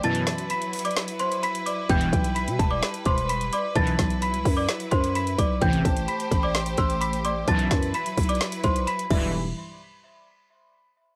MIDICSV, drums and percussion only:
0, 0, Header, 1, 2, 480
1, 0, Start_track
1, 0, Tempo, 465116
1, 36, Time_signature, 4, 2, 24, 8
1, 11514, End_track
2, 0, Start_track
2, 0, Title_t, "Drums"
2, 36, Note_on_c, 9, 42, 73
2, 139, Note_off_c, 9, 42, 0
2, 152, Note_on_c, 9, 42, 58
2, 256, Note_off_c, 9, 42, 0
2, 276, Note_on_c, 9, 38, 91
2, 281, Note_on_c, 9, 42, 89
2, 379, Note_off_c, 9, 38, 0
2, 384, Note_off_c, 9, 42, 0
2, 396, Note_on_c, 9, 42, 56
2, 499, Note_off_c, 9, 42, 0
2, 515, Note_on_c, 9, 42, 70
2, 618, Note_off_c, 9, 42, 0
2, 636, Note_on_c, 9, 42, 56
2, 740, Note_off_c, 9, 42, 0
2, 756, Note_on_c, 9, 42, 75
2, 758, Note_on_c, 9, 46, 84
2, 816, Note_off_c, 9, 42, 0
2, 816, Note_on_c, 9, 42, 66
2, 861, Note_off_c, 9, 46, 0
2, 876, Note_off_c, 9, 42, 0
2, 876, Note_on_c, 9, 42, 57
2, 936, Note_off_c, 9, 42, 0
2, 936, Note_on_c, 9, 42, 47
2, 996, Note_off_c, 9, 42, 0
2, 996, Note_on_c, 9, 38, 113
2, 996, Note_on_c, 9, 42, 73
2, 1099, Note_off_c, 9, 38, 0
2, 1099, Note_off_c, 9, 42, 0
2, 1113, Note_on_c, 9, 42, 77
2, 1217, Note_off_c, 9, 42, 0
2, 1232, Note_on_c, 9, 42, 59
2, 1335, Note_off_c, 9, 42, 0
2, 1359, Note_on_c, 9, 42, 63
2, 1462, Note_off_c, 9, 42, 0
2, 1479, Note_on_c, 9, 42, 83
2, 1582, Note_off_c, 9, 42, 0
2, 1599, Note_on_c, 9, 42, 62
2, 1702, Note_off_c, 9, 42, 0
2, 1719, Note_on_c, 9, 42, 89
2, 1822, Note_off_c, 9, 42, 0
2, 1956, Note_on_c, 9, 36, 126
2, 1956, Note_on_c, 9, 42, 74
2, 2059, Note_off_c, 9, 36, 0
2, 2059, Note_off_c, 9, 42, 0
2, 2072, Note_on_c, 9, 42, 59
2, 2176, Note_off_c, 9, 42, 0
2, 2196, Note_on_c, 9, 36, 100
2, 2201, Note_on_c, 9, 42, 90
2, 2299, Note_off_c, 9, 36, 0
2, 2304, Note_off_c, 9, 42, 0
2, 2316, Note_on_c, 9, 42, 55
2, 2419, Note_off_c, 9, 42, 0
2, 2435, Note_on_c, 9, 42, 71
2, 2538, Note_off_c, 9, 42, 0
2, 2557, Note_on_c, 9, 42, 58
2, 2660, Note_off_c, 9, 42, 0
2, 2677, Note_on_c, 9, 36, 101
2, 2679, Note_on_c, 9, 42, 78
2, 2780, Note_off_c, 9, 36, 0
2, 2782, Note_off_c, 9, 42, 0
2, 2917, Note_on_c, 9, 38, 113
2, 2917, Note_on_c, 9, 42, 72
2, 3020, Note_off_c, 9, 38, 0
2, 3020, Note_off_c, 9, 42, 0
2, 3034, Note_on_c, 9, 42, 78
2, 3138, Note_off_c, 9, 42, 0
2, 3152, Note_on_c, 9, 42, 62
2, 3157, Note_on_c, 9, 36, 91
2, 3256, Note_off_c, 9, 42, 0
2, 3260, Note_off_c, 9, 36, 0
2, 3279, Note_on_c, 9, 42, 64
2, 3382, Note_off_c, 9, 42, 0
2, 3399, Note_on_c, 9, 42, 79
2, 3503, Note_off_c, 9, 42, 0
2, 3520, Note_on_c, 9, 42, 60
2, 3623, Note_off_c, 9, 42, 0
2, 3639, Note_on_c, 9, 42, 92
2, 3742, Note_off_c, 9, 42, 0
2, 3876, Note_on_c, 9, 42, 71
2, 3877, Note_on_c, 9, 36, 124
2, 3979, Note_off_c, 9, 42, 0
2, 3980, Note_off_c, 9, 36, 0
2, 3993, Note_on_c, 9, 42, 59
2, 4096, Note_off_c, 9, 42, 0
2, 4116, Note_on_c, 9, 38, 90
2, 4117, Note_on_c, 9, 36, 96
2, 4121, Note_on_c, 9, 42, 90
2, 4219, Note_off_c, 9, 38, 0
2, 4220, Note_off_c, 9, 36, 0
2, 4224, Note_off_c, 9, 42, 0
2, 4236, Note_on_c, 9, 42, 55
2, 4339, Note_off_c, 9, 42, 0
2, 4355, Note_on_c, 9, 42, 71
2, 4459, Note_off_c, 9, 42, 0
2, 4477, Note_on_c, 9, 42, 58
2, 4581, Note_off_c, 9, 42, 0
2, 4597, Note_on_c, 9, 36, 97
2, 4599, Note_on_c, 9, 46, 83
2, 4700, Note_off_c, 9, 36, 0
2, 4702, Note_off_c, 9, 46, 0
2, 4837, Note_on_c, 9, 38, 116
2, 4837, Note_on_c, 9, 42, 73
2, 4940, Note_off_c, 9, 38, 0
2, 4940, Note_off_c, 9, 42, 0
2, 4955, Note_on_c, 9, 42, 78
2, 5058, Note_off_c, 9, 42, 0
2, 5073, Note_on_c, 9, 42, 60
2, 5077, Note_on_c, 9, 36, 90
2, 5176, Note_off_c, 9, 42, 0
2, 5180, Note_off_c, 9, 36, 0
2, 5199, Note_on_c, 9, 42, 65
2, 5303, Note_off_c, 9, 42, 0
2, 5319, Note_on_c, 9, 42, 85
2, 5423, Note_off_c, 9, 42, 0
2, 5439, Note_on_c, 9, 42, 62
2, 5542, Note_off_c, 9, 42, 0
2, 5557, Note_on_c, 9, 36, 104
2, 5559, Note_on_c, 9, 42, 90
2, 5660, Note_off_c, 9, 36, 0
2, 5662, Note_off_c, 9, 42, 0
2, 5796, Note_on_c, 9, 42, 72
2, 5797, Note_on_c, 9, 36, 123
2, 5900, Note_off_c, 9, 36, 0
2, 5900, Note_off_c, 9, 42, 0
2, 5913, Note_on_c, 9, 42, 61
2, 6016, Note_off_c, 9, 42, 0
2, 6037, Note_on_c, 9, 36, 101
2, 6041, Note_on_c, 9, 42, 89
2, 6140, Note_off_c, 9, 36, 0
2, 6145, Note_off_c, 9, 42, 0
2, 6156, Note_on_c, 9, 42, 56
2, 6260, Note_off_c, 9, 42, 0
2, 6275, Note_on_c, 9, 42, 72
2, 6378, Note_off_c, 9, 42, 0
2, 6397, Note_on_c, 9, 42, 55
2, 6501, Note_off_c, 9, 42, 0
2, 6517, Note_on_c, 9, 36, 99
2, 6519, Note_on_c, 9, 42, 74
2, 6620, Note_off_c, 9, 36, 0
2, 6622, Note_off_c, 9, 42, 0
2, 6757, Note_on_c, 9, 38, 117
2, 6757, Note_on_c, 9, 42, 72
2, 6860, Note_off_c, 9, 38, 0
2, 6860, Note_off_c, 9, 42, 0
2, 6874, Note_on_c, 9, 42, 81
2, 6977, Note_off_c, 9, 42, 0
2, 6992, Note_on_c, 9, 42, 60
2, 6997, Note_on_c, 9, 36, 92
2, 7095, Note_off_c, 9, 42, 0
2, 7100, Note_off_c, 9, 36, 0
2, 7119, Note_on_c, 9, 42, 64
2, 7222, Note_off_c, 9, 42, 0
2, 7239, Note_on_c, 9, 42, 84
2, 7342, Note_off_c, 9, 42, 0
2, 7359, Note_on_c, 9, 42, 62
2, 7462, Note_off_c, 9, 42, 0
2, 7479, Note_on_c, 9, 42, 92
2, 7582, Note_off_c, 9, 42, 0
2, 7716, Note_on_c, 9, 36, 121
2, 7716, Note_on_c, 9, 42, 72
2, 7819, Note_off_c, 9, 42, 0
2, 7820, Note_off_c, 9, 36, 0
2, 7832, Note_on_c, 9, 42, 57
2, 7936, Note_off_c, 9, 42, 0
2, 7956, Note_on_c, 9, 36, 99
2, 7956, Note_on_c, 9, 38, 91
2, 7961, Note_on_c, 9, 42, 88
2, 8059, Note_off_c, 9, 38, 0
2, 8060, Note_off_c, 9, 36, 0
2, 8064, Note_off_c, 9, 42, 0
2, 8076, Note_on_c, 9, 42, 55
2, 8179, Note_off_c, 9, 42, 0
2, 8195, Note_on_c, 9, 42, 72
2, 8298, Note_off_c, 9, 42, 0
2, 8318, Note_on_c, 9, 42, 58
2, 8421, Note_off_c, 9, 42, 0
2, 8437, Note_on_c, 9, 36, 101
2, 8437, Note_on_c, 9, 42, 80
2, 8439, Note_on_c, 9, 46, 80
2, 8497, Note_off_c, 9, 42, 0
2, 8497, Note_on_c, 9, 42, 69
2, 8540, Note_off_c, 9, 36, 0
2, 8542, Note_off_c, 9, 46, 0
2, 8557, Note_off_c, 9, 42, 0
2, 8557, Note_on_c, 9, 42, 58
2, 8617, Note_off_c, 9, 42, 0
2, 8617, Note_on_c, 9, 42, 45
2, 8677, Note_off_c, 9, 42, 0
2, 8677, Note_on_c, 9, 38, 122
2, 8677, Note_on_c, 9, 42, 70
2, 8780, Note_off_c, 9, 38, 0
2, 8780, Note_off_c, 9, 42, 0
2, 8794, Note_on_c, 9, 42, 77
2, 8897, Note_off_c, 9, 42, 0
2, 8912, Note_on_c, 9, 42, 61
2, 8917, Note_on_c, 9, 36, 95
2, 9015, Note_off_c, 9, 42, 0
2, 9020, Note_off_c, 9, 36, 0
2, 9039, Note_on_c, 9, 42, 62
2, 9142, Note_off_c, 9, 42, 0
2, 9159, Note_on_c, 9, 42, 83
2, 9262, Note_off_c, 9, 42, 0
2, 9279, Note_on_c, 9, 42, 60
2, 9382, Note_off_c, 9, 42, 0
2, 9396, Note_on_c, 9, 36, 116
2, 9396, Note_on_c, 9, 49, 98
2, 9499, Note_off_c, 9, 49, 0
2, 9500, Note_off_c, 9, 36, 0
2, 11514, End_track
0, 0, End_of_file